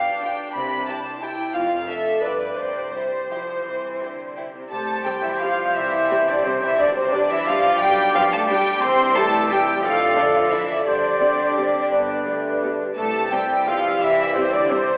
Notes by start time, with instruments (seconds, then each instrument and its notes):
Already playing: harp B2 D4 F4 G4, viola section D4, violin section F5
0.05 harp D5
0.22 violin section F4 G4 G5, harp G4
0.39 harp F4
0.54 double bass section C2, harp C3, cello section C3, violin section B5
0.71 harp C4
0.87 violin section E4 G4 A5, harp G4
1.05 harp C5
1.22 viola section E4, violin section E4 G4 G5, harp G4
1.40 harp E4
1.54 double bass section F1, cello section F2, harp F2, viola section F4, violin section F5
1.71 harp A3
1.87 violin section D4 A4 E5, viola section A4, harp A4
2.06 harp D4
2.23 double bass section G1, cello section G2, harp G2, violin section F4 B4 D5, viola section B4
2.41 harp F4 G4
2.57 double bass section C2, cello section C3, harp C3, viola section C5, violin section D5
2.76 harp C4
2.94 cello section G3, violin section E4 G4 C5, harp G4
3.13 harp C5
3.31 cello section F3, violin section E4 G4, harp G4
3.49 harp E4
3.64 double bass section C2, harp C3, cello section E3
3.83 harp C4
4.00 cello section D3, violin section E4 G4, harp G4
4.19 harp C5
4.36 violin section E4 G4, harp G4
4.54 cello section C3, harp E4
4.70 double bass section C2, harp C3, trombone section G3, cello section A3, french horn section C4 G4, clarinet G4, violin section A4 A5, oboe C5, flute section A5
4.89 harp C4
5.05 cello section G3, viola section G3 C4, violin section G4 G5, harp G4, flute section G5
5.23 cello section E3, violin section E4 E5, harp C5, flute section E5
5.42 cello section F3, viola section G3 C4, violin section F4 F5, harp G4, flute section F5
5.59 harp C4
5.75 double bass section C2, harp C3, cello section E3, violin section E4 E5, flute section E5
5.92 harp G3
6.10 viola section G3 C4, harp G4
6.28 cello section D3, violin section D4 D5, harp C5, flute section D5
6.45 cello section C3, viola section G3 C4, violin section C4 C5, harp G4, flute section C5
6.63 cello section E3, harp C4, violin section E4 E5, flute section E5
6.77 double bass section B1, harp B2, cello section D3, trombone section G3, french horn section D4 G4, violin section D4 D5, clarinet G4, oboe D5, flute section D5
6.95 cello section C3, violin section C4 C5, harp D4, flute section C5
7.12 cello section D3, viola section G3 D4, violin section D4 D5, harp G4, flute section D5
7.30 cello section E3, violin section E4 E5, harp D5, flute section E5
7.47 cello section F3, viola section G3 D4, violin section F4 F5, harp G4, flute section F5
7.65 harp D4
7.80 double bass section B1, harp B2, cello section G3, violin section G4 G5, flute section G5
7.98 harp B3
8.14 cello section F3, viola section G3 D4, violin section F4 F5, flute section F5
8.32 cello section A3, violin section A4 A5, harp D5, flute section A5
8.49 cello section G3, viola section G3 D4, harp G4, violin section G4 G5, flute section G5
8.68 harp D4
8.82 double bass section C2, harp C3, trombone section E3 G3, cello section C4, french horn section C4 G4, clarinet G4, violin section C5 C6, oboe E5, flute section C6
9.00 harp C4
9.15 viola section G3 E4, cello section A3, harp G4, violin section A4 A5, flute section A5
9.34 harp C5
9.50 viola section G3 E4, cello section G3, violin section G4 G5, harp G4, flute section G5
9.68 harp E4
9.83 double bass section F1, harp F2, trombone section D3 F3, cello section F3, french horn section A3 A4, violin section F4 F5, clarinet A4, oboe D5, flute section F5
10.17 cello section D3, viola section A3 D4, violin section D4 D5, harp A4, flute section D5
10.34 cello section F3, harp D4, violin section F4 F5, flute section F5
10.51 cello section E3, viola section A3 D4, violin section E4 E5, harp A4, flute section E5
10.70 harp D4
10.85 double bass section G1, harp G2, cello section D3, trombone section G3, french horn section C4 G4, violin section D4 D5, clarinet G4, oboe C5, flute section D5
11.02 harp C4
11.20 viola section G3 C4, french horn section D4, harp G4
11.39 harp C5
11.57 viola section G3 C4, french horn section C4, harp G4
11.74 harp D4
11.91 double bass section G1, harp G2, trombone section D3, french horn section B3, oboe B4
12.08 harp B3
12.26 viola section G3 B3, french horn section A3, harp G4
12.44 harp B4
12.62 viola section G3 B3, harp G4
12.80 french horn section G3, harp D4
12.96 double bass section C2, harp C3, trombone section E3 G3, cello section A3, french horn section C4 G4, clarinet G4, violin section A4 A5, oboe E5, flute section A5
13.15 harp C4
13.31 cello section G3, viola section G3 C4, violin section G4 G5, harp G4, flute section G5
13.50 harp C5
13.66 cello section F3, viola section G3 C4, violin section F4 F5, harp G4, flute section F5
13.85 harp E4
14.01 double bass section C2, harp C3, cello section E3, violin section E4 E5, flute section E5
14.18 harp C4
14.35 cello section C3, viola section G3 C4, violin section C4 C5, harp G4, flute section C5
14.52 cello section D3, violin section D4 D5, harp C5, flute section D5
14.70 cello section C3, viola section G3 C4, violin section C4 C5, harp G4, flute section C5
14.88 harp E4